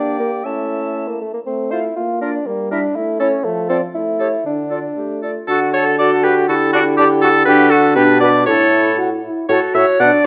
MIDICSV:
0, 0, Header, 1, 6, 480
1, 0, Start_track
1, 0, Key_signature, -1, "minor"
1, 0, Tempo, 502092
1, 431, Time_signature, 2, 2, 24, 8
1, 5241, Key_signature, 2, "major"
1, 9812, End_track
2, 0, Start_track
2, 0, Title_t, "Oboe"
2, 0, Program_c, 0, 68
2, 0, Note_on_c, 0, 74, 47
2, 419, Note_on_c, 0, 76, 39
2, 433, Note_off_c, 0, 74, 0
2, 1147, Note_off_c, 0, 76, 0
2, 1635, Note_on_c, 0, 72, 44
2, 1721, Note_off_c, 0, 72, 0
2, 2118, Note_on_c, 0, 70, 46
2, 2201, Note_off_c, 0, 70, 0
2, 2594, Note_on_c, 0, 70, 56
2, 2676, Note_off_c, 0, 70, 0
2, 3057, Note_on_c, 0, 69, 58
2, 3140, Note_off_c, 0, 69, 0
2, 3526, Note_on_c, 0, 69, 55
2, 3611, Note_off_c, 0, 69, 0
2, 4010, Note_on_c, 0, 69, 44
2, 4095, Note_off_c, 0, 69, 0
2, 4498, Note_on_c, 0, 69, 38
2, 4585, Note_off_c, 0, 69, 0
2, 4993, Note_on_c, 0, 69, 35
2, 5080, Note_off_c, 0, 69, 0
2, 5236, Note_on_c, 0, 69, 102
2, 5346, Note_off_c, 0, 69, 0
2, 5483, Note_on_c, 0, 73, 102
2, 5592, Note_off_c, 0, 73, 0
2, 5725, Note_on_c, 0, 74, 106
2, 5833, Note_off_c, 0, 74, 0
2, 5964, Note_on_c, 0, 71, 100
2, 6071, Note_off_c, 0, 71, 0
2, 6199, Note_on_c, 0, 69, 102
2, 6429, Note_off_c, 0, 69, 0
2, 6435, Note_on_c, 0, 66, 120
2, 6541, Note_off_c, 0, 66, 0
2, 6666, Note_on_c, 0, 67, 122
2, 6772, Note_off_c, 0, 67, 0
2, 6898, Note_on_c, 0, 69, 125
2, 7121, Note_off_c, 0, 69, 0
2, 7127, Note_on_c, 0, 71, 127
2, 7363, Note_on_c, 0, 69, 115
2, 7377, Note_off_c, 0, 71, 0
2, 7598, Note_off_c, 0, 69, 0
2, 7604, Note_on_c, 0, 71, 123
2, 7836, Note_off_c, 0, 71, 0
2, 7842, Note_on_c, 0, 74, 109
2, 8083, Note_off_c, 0, 74, 0
2, 8088, Note_on_c, 0, 73, 108
2, 8570, Note_off_c, 0, 73, 0
2, 9070, Note_on_c, 0, 73, 105
2, 9180, Note_off_c, 0, 73, 0
2, 9317, Note_on_c, 0, 76, 113
2, 9425, Note_off_c, 0, 76, 0
2, 9559, Note_on_c, 0, 78, 119
2, 9665, Note_off_c, 0, 78, 0
2, 9812, End_track
3, 0, Start_track
3, 0, Title_t, "Flute"
3, 0, Program_c, 1, 73
3, 0, Note_on_c, 1, 79, 49
3, 436, Note_on_c, 1, 81, 41
3, 450, Note_off_c, 1, 79, 0
3, 1156, Note_off_c, 1, 81, 0
3, 1647, Note_on_c, 1, 77, 42
3, 1756, Note_off_c, 1, 77, 0
3, 2124, Note_on_c, 1, 74, 50
3, 2231, Note_off_c, 1, 74, 0
3, 2596, Note_on_c, 1, 76, 50
3, 2703, Note_off_c, 1, 76, 0
3, 3064, Note_on_c, 1, 73, 58
3, 3170, Note_off_c, 1, 73, 0
3, 3534, Note_on_c, 1, 74, 50
3, 3643, Note_off_c, 1, 74, 0
3, 4009, Note_on_c, 1, 73, 47
3, 4123, Note_off_c, 1, 73, 0
3, 4500, Note_on_c, 1, 74, 37
3, 4616, Note_off_c, 1, 74, 0
3, 4995, Note_on_c, 1, 74, 38
3, 5110, Note_off_c, 1, 74, 0
3, 5238, Note_on_c, 1, 66, 91
3, 5465, Note_off_c, 1, 66, 0
3, 5477, Note_on_c, 1, 69, 100
3, 5718, Note_off_c, 1, 69, 0
3, 5724, Note_on_c, 1, 69, 98
3, 5959, Note_on_c, 1, 67, 99
3, 5973, Note_off_c, 1, 69, 0
3, 6193, Note_off_c, 1, 67, 0
3, 6199, Note_on_c, 1, 66, 89
3, 6256, Note_off_c, 1, 66, 0
3, 6434, Note_on_c, 1, 62, 105
3, 6492, Note_off_c, 1, 62, 0
3, 6669, Note_on_c, 1, 62, 104
3, 6727, Note_off_c, 1, 62, 0
3, 6903, Note_on_c, 1, 66, 111
3, 6960, Note_off_c, 1, 66, 0
3, 7135, Note_on_c, 1, 67, 127
3, 7374, Note_on_c, 1, 66, 106
3, 7389, Note_off_c, 1, 67, 0
3, 7606, Note_off_c, 1, 66, 0
3, 7612, Note_on_c, 1, 67, 113
3, 7669, Note_off_c, 1, 67, 0
3, 7859, Note_on_c, 1, 71, 107
3, 7917, Note_off_c, 1, 71, 0
3, 8097, Note_on_c, 1, 69, 104
3, 8575, Note_off_c, 1, 69, 0
3, 9071, Note_on_c, 1, 69, 99
3, 9315, Note_on_c, 1, 73, 107
3, 9329, Note_off_c, 1, 69, 0
3, 9559, Note_on_c, 1, 74, 118
3, 9574, Note_off_c, 1, 73, 0
3, 9811, Note_off_c, 1, 74, 0
3, 9812, End_track
4, 0, Start_track
4, 0, Title_t, "Clarinet"
4, 0, Program_c, 2, 71
4, 0, Note_on_c, 2, 67, 49
4, 426, Note_off_c, 2, 67, 0
4, 432, Note_on_c, 2, 64, 34
4, 1139, Note_off_c, 2, 64, 0
4, 1641, Note_on_c, 2, 65, 44
4, 1725, Note_off_c, 2, 65, 0
4, 2122, Note_on_c, 2, 65, 45
4, 2203, Note_off_c, 2, 65, 0
4, 2594, Note_on_c, 2, 64, 52
4, 2675, Note_off_c, 2, 64, 0
4, 3064, Note_on_c, 2, 64, 51
4, 3144, Note_off_c, 2, 64, 0
4, 3529, Note_on_c, 2, 65, 52
4, 3612, Note_off_c, 2, 65, 0
4, 4007, Note_on_c, 2, 67, 42
4, 4093, Note_off_c, 2, 67, 0
4, 4500, Note_on_c, 2, 65, 38
4, 4587, Note_off_c, 2, 65, 0
4, 4743, Note_on_c, 2, 67, 45
4, 4991, Note_on_c, 2, 65, 36
4, 5005, Note_off_c, 2, 67, 0
4, 5238, Note_off_c, 2, 65, 0
4, 5721, Note_on_c, 2, 66, 96
4, 6202, Note_on_c, 2, 64, 91
4, 6216, Note_off_c, 2, 66, 0
4, 7132, Note_off_c, 2, 64, 0
4, 7138, Note_on_c, 2, 62, 90
4, 7602, Note_off_c, 2, 62, 0
4, 7614, Note_on_c, 2, 62, 104
4, 8089, Note_off_c, 2, 62, 0
4, 8098, Note_on_c, 2, 64, 76
4, 8814, Note_off_c, 2, 64, 0
4, 9072, Note_on_c, 2, 66, 90
4, 9522, Note_off_c, 2, 66, 0
4, 9560, Note_on_c, 2, 62, 97
4, 9812, Note_off_c, 2, 62, 0
4, 9812, End_track
5, 0, Start_track
5, 0, Title_t, "French horn"
5, 0, Program_c, 3, 60
5, 0, Note_on_c, 3, 58, 51
5, 428, Note_off_c, 3, 58, 0
5, 434, Note_on_c, 3, 57, 42
5, 1140, Note_off_c, 3, 57, 0
5, 1396, Note_on_c, 3, 57, 52
5, 1800, Note_off_c, 3, 57, 0
5, 1875, Note_on_c, 3, 58, 51
5, 2273, Note_off_c, 3, 58, 0
5, 2352, Note_on_c, 3, 55, 62
5, 2746, Note_off_c, 3, 55, 0
5, 2823, Note_on_c, 3, 57, 61
5, 3213, Note_off_c, 3, 57, 0
5, 3295, Note_on_c, 3, 53, 63
5, 3690, Note_off_c, 3, 53, 0
5, 3773, Note_on_c, 3, 57, 56
5, 4175, Note_off_c, 3, 57, 0
5, 4253, Note_on_c, 3, 50, 44
5, 4665, Note_off_c, 3, 50, 0
5, 4745, Note_on_c, 3, 57, 47
5, 5157, Note_off_c, 3, 57, 0
5, 5236, Note_on_c, 3, 66, 77
5, 5690, Note_off_c, 3, 66, 0
5, 5724, Note_on_c, 3, 66, 80
5, 6207, Note_on_c, 3, 67, 95
5, 6222, Note_off_c, 3, 66, 0
5, 6674, Note_off_c, 3, 67, 0
5, 6678, Note_on_c, 3, 67, 102
5, 7134, Note_on_c, 3, 66, 101
5, 7149, Note_off_c, 3, 67, 0
5, 7615, Note_on_c, 3, 67, 95
5, 7630, Note_off_c, 3, 66, 0
5, 7857, Note_on_c, 3, 66, 80
5, 7872, Note_off_c, 3, 67, 0
5, 8092, Note_off_c, 3, 66, 0
5, 8098, Note_on_c, 3, 64, 79
5, 8528, Note_off_c, 3, 64, 0
5, 8584, Note_on_c, 3, 66, 96
5, 8694, Note_off_c, 3, 66, 0
5, 8829, Note_on_c, 3, 64, 65
5, 9063, Note_off_c, 3, 64, 0
5, 9069, Note_on_c, 3, 66, 83
5, 9179, Note_off_c, 3, 66, 0
5, 9317, Note_on_c, 3, 66, 77
5, 9425, Note_off_c, 3, 66, 0
5, 9552, Note_on_c, 3, 62, 82
5, 9659, Note_off_c, 3, 62, 0
5, 9812, End_track
6, 0, Start_track
6, 0, Title_t, "Bassoon"
6, 0, Program_c, 4, 70
6, 0, Note_on_c, 4, 62, 60
6, 183, Note_off_c, 4, 62, 0
6, 189, Note_on_c, 4, 58, 53
6, 297, Note_off_c, 4, 58, 0
6, 428, Note_on_c, 4, 61, 52
6, 1031, Note_on_c, 4, 58, 46
6, 1046, Note_off_c, 4, 61, 0
6, 1153, Note_off_c, 4, 58, 0
6, 1157, Note_on_c, 4, 57, 46
6, 1275, Note_off_c, 4, 57, 0
6, 1279, Note_on_c, 4, 58, 39
6, 1333, Note_off_c, 4, 58, 0
6, 1396, Note_on_c, 4, 60, 57
6, 1638, Note_on_c, 4, 64, 59
6, 1652, Note_off_c, 4, 60, 0
6, 1871, Note_off_c, 4, 64, 0
6, 1877, Note_on_c, 4, 65, 61
6, 2109, Note_off_c, 4, 65, 0
6, 2115, Note_on_c, 4, 62, 63
6, 2352, Note_on_c, 4, 58, 65
6, 2367, Note_off_c, 4, 62, 0
6, 2587, Note_off_c, 4, 58, 0
6, 2593, Note_on_c, 4, 62, 67
6, 2827, Note_on_c, 4, 64, 68
6, 2842, Note_off_c, 4, 62, 0
6, 3053, Note_off_c, 4, 64, 0
6, 3058, Note_on_c, 4, 61, 72
6, 3293, Note_on_c, 4, 57, 73
6, 3308, Note_off_c, 4, 61, 0
6, 3527, Note_off_c, 4, 57, 0
6, 3533, Note_on_c, 4, 60, 68
6, 3640, Note_off_c, 4, 60, 0
6, 3773, Note_on_c, 4, 64, 64
6, 4247, Note_off_c, 4, 64, 0
6, 4262, Note_on_c, 4, 62, 51
6, 4984, Note_off_c, 4, 62, 0
6, 5239, Note_on_c, 4, 50, 80
6, 6163, Note_off_c, 4, 50, 0
6, 6204, Note_on_c, 4, 50, 89
6, 7119, Note_off_c, 4, 50, 0
6, 7137, Note_on_c, 4, 50, 106
6, 7610, Note_on_c, 4, 47, 103
6, 7624, Note_off_c, 4, 50, 0
6, 8097, Note_on_c, 4, 45, 88
6, 8111, Note_off_c, 4, 47, 0
6, 8828, Note_off_c, 4, 45, 0
6, 9073, Note_on_c, 4, 45, 89
6, 9182, Note_off_c, 4, 45, 0
6, 9312, Note_on_c, 4, 45, 83
6, 9421, Note_off_c, 4, 45, 0
6, 9556, Note_on_c, 4, 47, 89
6, 9662, Note_off_c, 4, 47, 0
6, 9812, End_track
0, 0, End_of_file